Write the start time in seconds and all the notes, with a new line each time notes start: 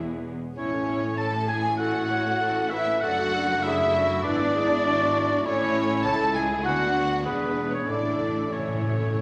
Already playing: E1 E2 G#3 B3 E4 G#4 C#5
0.56 A1 A2 A3 C#4 E4 C#5
0.72 A3 C#4
0.87 C#4 E4
1.02 A3 C#4
1.18 A3 C#4 E4 A4 A5
1.32 A3 C#4
1.48 C#4 E4 G#4 G#5
1.64 A3 C#4
1.78 C#4 E4 F#4 A4 F#5
1.94 A3 C#4
2.10 C#4 E4 C#5
2.26 A3 C#4
2.39 C#4 E4 A4
2.55 A3 C#4
2.70 C#4 E4 B4 E5
2.87 A3 C#4
3.01 F#1 F#2 F#3 A3 D4 F#4 A4 F#5
3.18 A3 F#4
3.34 F#3 D4 A4
3.50 A3 F#4
3.62 F#3 D4 E4 G#4 E5
3.79 A3 F#4
3.95 F#3 D4 F#4
4.09 A3 F#4
4.23 G#1 G#2 G#3 B3 D4 E4 B4 D5
4.40 B3 D4
4.56 G#3 E4 G#4
4.72 B3 D4
4.86 G#3 E4 F#4
5.02 B3 D4
5.16 G#3 E4
5.32 B3 D4
5.45 A1 A2 A3 C#4 E4 C#5
6.04 C#2 A3 E4 A4 A5
6.34 G#4 G#5
6.63 D2 B3 D4 F#4 F#5
7.24 E1 E2 G#3 B3 D4 G#4 B4
7.71 C#4 C#5
7.86 A1 A2 A3 D4 E4 A4 D5
7.91 D5
7.97 A2
8.04 A2
8.20 A2
8.28 A2
8.36 A2
8.44 A2
8.51 A2 A3 C#4 E4 C#5
8.59 A2
8.66 A2
8.74 A2
8.82 A2
8.90 A2
8.98 A2
9.06 A2
9.14 A2